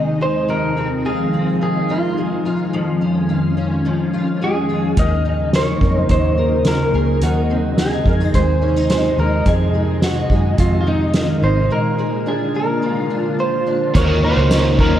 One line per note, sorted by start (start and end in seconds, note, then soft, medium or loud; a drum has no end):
0.00 0.47 D#2 medium
0.00 0.47 C3 medium
0.00 0.47 D#3 medium
0.00 0.51 D#3 medium
0.00 1.61 G#3 medium
0.00 4.94 G#3 medium
0.00 0.77 C4 medium
0.00 0.20 D#4 medium
0.00 2.69 D#4 medium
0.21 0.76 D#4 medium
0.21 0.50 C5 loud
0.48 2.72 F2 medium
0.48 4.93 D#3 medium
0.48 4.93 F3 medium
0.48 1.02 A#4 medium
0.77 1.33 C4 medium
1.05 1.89 F4 medium
1.05 1.62 G#4 medium
1.33 3.01 C4 medium
1.61 2.79 D#3 medium
1.61 1.91 G#4 medium
1.89 2.45 F4 medium
1.89 2.42 F4 medium
2.17 4.41 G#3 medium
2.45 3.29 F4 medium
2.73 4.98 F2 medium
2.73 4.95 F2 medium
2.73 4.96 C#4 medium
3.01 3.57 C#4 medium
3.29 4.12 F4 medium
3.57 5.25 C#4 medium
3.85 5.03 F3 medium
4.13 4.68 F4 medium
4.41 5.03 G#3 medium
4.41 4.95 G#4 medium
4.69 5.03 F4 medium
4.97 5.78 D#2 medium
4.97 7.20 C#3 medium
4.97 7.21 D#3 medium
4.97 7.20 F#3 medium
4.97 7.20 A#3 medium
4.97 7.20 D#4 medium
4.97 5.55 D#5 medium
4.97 kick medium
4.97 closed hi-hat medium
5.25 5.82 D#4 medium
5.53 6.36 A#4 medium
5.53 5.97 C#5 medium
5.53 snare medium
5.53 closed hi-hat medium
5.81 6.08 F2 medium
5.81 7.77 D#4 medium
5.81 kick medium
5.97 6.11 C5 medium
6.09 6.90 D#2 medium
6.09 7.28 F#3 medium
6.09 6.63 C5 medium
6.09 kick medium
6.09 closed hi-hat medium
6.38 6.93 A#4 medium
6.65 7.27 C#4 medium
6.65 6.96 A#4 medium
6.65 snare loud
6.65 closed hi-hat medium
6.94 7.20 C#2 medium
6.94 7.23 G#4 medium
6.94 7.27 A#4 medium
7.21 8.02 D#2 loud
7.21 11.67 C3 medium
7.21 9.49 D#3 medium
7.21 9.44 D#3 medium
7.21 13.91 G#3 medium
7.21 11.67 D#4 medium
7.21 7.78 F#4 medium
7.21 closed hi-hat medium
7.50 8.05 C4 medium
7.78 8.61 D#4 medium
7.78 8.36 G#4 medium
7.78 snare loud
7.78 closed hi-hat medium
8.05 8.32 F2 medium
8.05 8.20 A#3 medium
8.05 kick medium
8.20 9.52 C4 soft
8.34 9.14 D#2 medium
8.34 8.90 G#3 medium
8.34 8.90 C5 medium
8.34 kick medium
8.34 closed hi-hat medium
8.61 8.76 C#4 medium
8.76 9.17 D#4 soft
8.90 9.74 G#3 medium
8.90 9.19 C5 medium
8.90 snare loud
8.90 closed hi-hat medium
9.18 9.45 D#2 medium
9.18 10.02 D#4 medium
9.18 9.48 A#4 medium
9.46 10.26 F2 loud
9.46 11.70 F2 medium
9.46 11.68 D#3 medium
9.46 10.04 G#4 medium
9.46 kick loud
9.46 closed hi-hat medium
9.74 10.30 G#3 medium
10.02 10.85 D#4 medium
10.02 10.59 F#4 medium
10.02 snare loud
10.02 closed hi-hat medium
10.30 10.57 F#2 medium
10.30 11.98 G#3 medium
10.30 kick medium
10.58 11.38 F2 medium
10.58 11.70 C3 medium
10.58 10.80 F4 medium
10.58 kick medium
10.58 closed hi-hat medium
10.81 10.87 F4 medium
10.86 11.41 D#4 medium
10.86 11.39 D#4 medium
11.14 11.76 D#3 medium
11.14 snare loud
11.14 closed hi-hat medium
11.42 11.69 G#1 medium
11.42 11.76 D#4 medium
11.42 11.72 C5 medium
11.70 13.94 A#2 medium
11.70 13.92 D3 medium
11.70 13.92 A#3 medium
11.70 13.92 F4 medium
11.70 12.29 A#4 medium
11.98 12.53 G#3 medium
12.26 13.09 D4 medium
12.26 12.56 G#4 medium
12.54 14.00 G#3 medium
12.54 13.36 A#4 medium
12.82 13.38 F3 medium
13.10 13.65 D4 medium
13.39 14.00 F3 medium
13.39 13.92 C5 medium
13.67 14.00 D4 medium
13.94 14.35 D#2 loud
13.94 15.00 C#3 medium
13.94 14.22 D#3 medium
13.94 15.00 D#3 medium
13.94 15.00 F#3 medium
13.94 14.23 A#3 medium
13.94 15.00 A#3 medium
13.94 14.23 C#4 medium
13.94 15.00 D#4 medium
13.94 14.21 F#4 medium
13.94 15.00 A#4 medium
13.94 14.24 C#5 medium
13.94 kick loud
13.94 closed hi-hat medium
14.22 14.52 C#4 soft
14.22 14.78 D#4 medium
14.22 14.50 F#4 medium
14.22 14.80 C5 medium
14.26 14.50 A#3 soft
14.37 14.77 C#2 medium
14.50 14.78 D#3 medium
14.50 14.79 A#3 medium
14.50 15.00 C#4 medium
14.50 14.79 C#4 medium
14.50 snare loud
14.50 closed hi-hat medium
14.50 tambourine medium
14.54 14.77 F#4 medium
14.78 15.00 D#2 medium
14.78 15.00 C#4 soft
14.78 15.00 D#4 medium
14.78 15.00 F#4 medium
14.78 15.00 A#4 medium
14.78 kick loud
14.82 15.00 A#3 soft